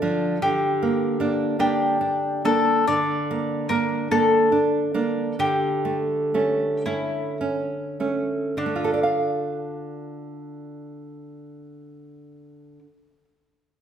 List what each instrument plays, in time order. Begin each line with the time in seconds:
Already playing: nylon-string guitar D3, mandolin A4
0.02 nylon-string guitar F3 D4
0.42 nylon-string guitar D3, mandolin G4
0.83 nylon-string guitar A#3
1.20 nylon-string guitar A#3 D4
1.59 nylon-string guitar A#3 D4, mandolin G4
2.01 nylon-string guitar D4
2.45 nylon-string guitar A#3 D4, mandolin A4
2.87 nylon-string guitar D3, mandolin D5
3.31 nylon-string guitar A#3
3.69 nylon-string guitar A#3 D4, mandolin A#4
4.11 nylon-string guitar A#3 D4, mandolin A4
4.52 nylon-string guitar D4
4.94 nylon-string guitar A#3 D4
5.39 nylon-string guitar D3, mandolin G4
5.85 nylon-string guitar A3
6.34 nylon-string guitar A3 C#4
6.86 nylon-string guitar A3 C#4, mandolin E4
7.41 nylon-string guitar C#4
8.00 nylon-string guitar A3 C#4
8.57 nylon-string guitar D3, mandolin D4
8.66 nylon-string guitar A3
8.76 nylon-string guitar F4
8.84 nylon-string guitar A4
8.94 nylon-string guitar D5
9.03 nylon-string guitar F5